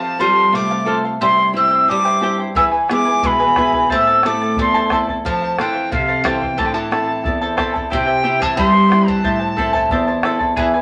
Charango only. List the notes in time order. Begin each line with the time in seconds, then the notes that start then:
0.02 C5 F5
0.19 A4 C5 F5
0.37 C5 F5
0.53 A4 C5 F5
0.71 A4 C5 F5
0.86 A4 C5 F5
1.04 C5 F5
1.21 E4 G4 C5 E5 G5
1.38 E4 C5 G5
1.55 E4 C5 E5 G5
1.71 E4 C5 G5
1.87 E4 C5 E5 G5
2.05 E4 G4 C5 E5 G5
2.22 E4 G4 C5 E5 G5
2.39 E4 C5 G5
2.56 E4 G#4 B4 E5 G#5
2.71 E4 B4 G#5
2.88 E4 B4 E5 G#5
3.05 E4 B4 G#5
3.23 E4 B4 E5 G#5
3.39 E4 G#4 B4 E5 G#5
3.57 E4 G#4 B4 E5 G#5
3.74 E4 B4 G#5
3.90 E4 A4 C5 E5 A5
4.07 E4 A4 A5
4.23 E4 A4 E5 A5
4.41 E4 A4 A5
4.58 E4 A4 E5 A5
4.74 E4 A4 C5 E5 A5
4.91 E4 A4 C5 E5 A5
5.09 E4 A4 A5
5.25 A4 C5 F5
5.42 C5 F5
5.58 A4 C5 F5
5.74 C5 F5
5.91 A4 C5 F5
6.08 A4 C5 F5
6.25 A4 C5 F5
6.41 C5 F5
6.57 E4 A4 C5 E5 A5
6.74 E4 A4 A5
6.92 E4 A4 E5 A5
7.07 E4 A4 A5
7.24 E4 A4 E5 A5
7.41 E4 A4 C5 E5 A5
7.57 E4 A4 C5 E5 A5
7.74 E4 A4 A5
7.90 E4 G4 C5 E5 G5
8.06 E4 C5 G5
8.23 E4 G4 C5 E5 G5
8.40 E4 G4 C5 E5 G5
8.55 E4 C5 E5 G5
8.73 E4 C5 G5
8.88 E4 C5 E5 G5
9.06 E4 C5 G5
9.23 E4 A4 C5 E5 A5
9.40 E4 C5 A5
9.56 E4 A4 C5 E5 A5
9.73 E4 A4 C5 E5 A5
9.91 E4 C5 E5 A5
10.07 E4 C5 A5
10.23 E4 C5 E5 A5
10.39 E4 C5 A5
10.56 E4 G#4 B4 E5 G#5
10.74 E4 B4 G#5